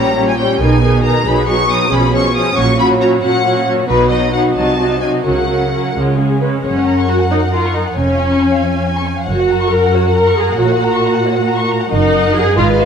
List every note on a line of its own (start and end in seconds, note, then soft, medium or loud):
0.00 0.36 A#1 soft
0.00 0.53 A#2 soft
0.00 0.16 G3 soft
0.00 0.16 C#4 soft
0.00 0.16 G4 soft
0.00 0.16 C#5 soft
0.00 0.27 A#5 medium
0.17 0.37 G3 soft
0.17 0.37 C#4 soft
0.17 0.38 G4 soft
0.17 0.37 C#5 soft
0.29 0.39 G#5 medium
0.38 0.60 G3 soft
0.38 0.60 C#4 soft
0.38 0.60 G4 soft
0.38 0.60 C#5 soft
0.38 0.60 G5 medium
0.59 1.01 B1 soft
0.59 1.18 B2 soft
0.59 0.82 D#3 soft
0.59 0.82 D#4 soft
0.59 0.83 G#4 soft
0.59 0.83 B4 soft
0.59 1.03 G#5 medium
0.83 1.03 D#3 soft
0.83 1.03 D#4 soft
0.83 1.04 G#4 soft
0.83 1.04 B4 soft
1.03 1.26 D#3 soft
1.03 1.25 D#4 soft
1.03 1.26 G#4 soft
1.03 1.25 B4 soft
1.03 1.25 A#5 medium
1.25 1.66 B1 soft
1.25 1.84 B2 soft
1.25 1.47 F#3 soft
1.25 1.47 D#4 soft
1.25 1.46 G#4 soft
1.25 1.46 B4 soft
1.25 1.48 B5 medium
1.47 1.68 F#3 soft
1.47 1.68 D#4 soft
1.47 1.67 G#4 soft
1.47 1.68 B4 soft
1.47 1.69 C#6 medium
1.69 1.91 F#3 soft
1.69 1.91 D#4 soft
1.69 1.89 G#4 soft
1.69 1.91 B4 soft
1.69 1.92 D#6 medium
1.90 2.32 B1 soft
1.90 2.49 B2 soft
1.90 2.11 F3 soft
1.90 2.11 C#4 soft
1.90 2.12 G#4 soft
1.90 2.11 C#5 soft
1.90 2.14 B5 medium
2.12 2.34 F3 soft
2.12 2.34 C#4 soft
2.12 2.33 G#4 soft
2.12 2.33 C#5 soft
2.12 2.35 C#6 medium
2.34 2.56 F3 soft
2.34 2.56 C#4 soft
2.34 2.56 G#4 soft
2.34 2.54 C#5 soft
2.34 2.57 D#6 medium
2.55 2.97 A#1 soft
2.55 3.14 A#2 soft
2.55 2.77 F#3 soft
2.55 2.77 C#4 soft
2.55 2.76 F#4 soft
2.55 2.76 C#5 soft
2.55 2.79 C#6 medium
2.77 2.98 F#3 soft
2.77 2.98 C#4 soft
2.77 2.98 F#4 soft
2.77 2.98 C#5 soft
2.77 2.88 B5 medium
2.99 3.21 F#3 soft
2.99 3.21 C#4 soft
2.99 3.21 F#4 soft
2.99 3.21 C#5 soft
2.99 3.09 A#5 medium
3.22 3.81 A#2 soft
3.22 3.43 F#3 soft
3.22 3.43 C#4 soft
3.22 3.44 F#4 soft
3.22 3.44 C#5 soft
3.22 3.66 F#5 medium
3.44 3.65 F#3 soft
3.44 3.65 C#4 soft
3.44 3.67 F#4 soft
3.44 3.66 C#5 soft
3.66 3.88 F#3 soft
3.66 3.88 C#4 soft
3.66 3.87 F#4 soft
3.66 3.89 C#5 soft
3.88 4.31 B1 soft
3.88 4.48 B2 soft
3.88 4.10 F#3 soft
3.88 4.10 D#4 soft
3.88 4.10 F#4 soft
3.88 4.09 B4 medium
3.88 4.10 B4 soft
4.10 4.32 F#3 soft
4.10 4.33 D#4 soft
4.10 4.32 F#4 soft
4.10 4.32 B4 soft
4.10 4.33 D#5 medium
4.33 4.55 F#3 soft
4.33 4.55 D#4 soft
4.33 4.56 F#4 soft
4.33 4.56 B4 soft
4.33 4.41 F#5 medium
4.56 4.99 C2 soft
4.56 5.17 C3 soft
4.56 4.78 F#3 soft
4.56 4.78 D#4 soft
4.56 4.78 F#4 soft
4.56 4.78 D#5 soft
4.56 5.01 A5 medium
4.79 5.00 F#3 soft
4.79 5.01 D#4 soft
4.79 5.00 F#4 soft
4.79 5.00 D#5 soft
5.01 5.23 F#3 soft
5.01 5.25 D#4 soft
5.01 5.24 F#4 soft
5.01 5.24 D#5 soft
5.01 5.10 G#5 soft
5.24 5.69 C#2 soft
5.24 5.87 C#3 soft
5.24 5.47 F#3 soft
5.24 5.47 C#4 soft
5.24 5.48 F#4 soft
5.24 5.47 A#4 soft
5.24 5.94 F#5 soft
5.48 5.71 F#3 soft
5.48 5.71 C#4 soft
5.48 5.70 F#4 soft
5.48 5.71 A#4 soft
5.71 5.95 F#3 soft
5.71 5.94 C#4 soft
5.71 5.95 F#4 soft
5.71 5.95 A#4 soft
5.95 6.38 C#2 soft
5.95 6.57 C#3 soft
5.95 6.16 G#3 soft
5.95 6.17 C#4 soft
5.95 6.17 F4 soft
6.18 6.40 G#3 soft
6.18 6.40 C#4 soft
6.18 6.41 G#4 soft
6.41 6.64 G#3 soft
6.41 6.63 C#4 soft
6.41 6.50 B4 soft
6.63 7.06 F#1 soft
6.63 7.93 F#2 soft
6.63 7.06 C#4 soft
6.63 7.92 A#4 soft
6.63 6.74 C#5 soft
6.63 7.93 F#5 soft
6.76 6.87 F#5 soft
6.85 6.97 A#5 soft
6.97 7.09 C#6 soft
7.08 7.17 F#4 soft
7.08 7.20 A#5 soft
7.19 7.30 F#5 soft
7.30 7.39 D#4 soft
7.30 7.42 C#5 soft
7.41 7.53 F#5 soft
7.52 7.74 F4 soft
7.52 7.64 A#5 soft
7.65 7.75 C#6 soft
7.74 7.82 D#4 soft
7.74 7.86 A#5 soft
7.85 7.96 F#5 soft
7.96 8.37 F1 soft
7.96 9.25 F2 soft
7.96 9.04 C#4 medium
7.96 8.62 C#5 soft
7.96 9.25 G#5 soft
8.08 8.19 F5 soft
8.19 8.30 G#5 soft
8.30 8.41 C#6 soft
8.41 8.52 G#5 soft
8.51 8.62 F5 soft
8.63 8.74 C#5 soft
8.74 8.85 F5 soft
8.84 8.95 G#5 soft
8.96 9.07 C#6 soft
9.05 9.17 G#5 soft
9.17 9.28 F5 soft
9.27 9.69 F#1 soft
9.27 10.59 F#2 soft
9.27 9.69 F#4 soft
9.27 11.90 A#4 soft
9.27 9.38 C#5 soft
9.27 11.87 F#5 soft
9.38 9.49 F#5 soft
9.49 9.60 A#5 soft
9.59 9.71 C#6 soft
9.71 9.94 A#4 medium
9.71 9.83 A#5 soft
9.83 9.94 F#5 soft
9.93 10.15 F#4 medium
9.93 10.05 C#5 soft
10.05 10.16 F#5 soft
10.15 10.37 A#4 medium
10.15 10.27 A#5 soft
10.27 10.38 C#6 soft
10.37 10.59 G#4 medium
10.37 10.49 A#5 soft
10.49 10.60 F#5 soft
10.59 11.00 A#1 soft
10.59 11.89 A#2 soft
10.59 11.67 F#4 medium
10.59 10.69 C#5 soft
10.70 10.81 F#5 soft
10.83 10.93 A#5 soft
10.93 11.04 C#6 soft
11.04 11.15 A#5 soft
11.14 11.25 F#5 soft
11.26 11.37 C#5 soft
11.34 11.46 F#5 soft
11.47 11.58 A#5 soft
11.57 11.69 C#6 soft
11.69 11.80 A#5 soft
11.80 11.91 F#5 soft
11.91 12.32 F#1 soft
11.91 12.53 F#2 medium
11.91 12.32 D#4 medium
11.91 12.53 A#4 medium
11.91 12.53 D#5 medium
11.91 12.53 F#5 medium
12.35 12.57 G#4 medium
12.57 12.85 G#1 medium
12.57 12.85 G#2 soft
12.57 12.65 F4 medium
12.57 12.85 B4 medium
12.57 12.85 D#5 medium
12.57 12.85 F5 soft
12.79 12.85 F#4 medium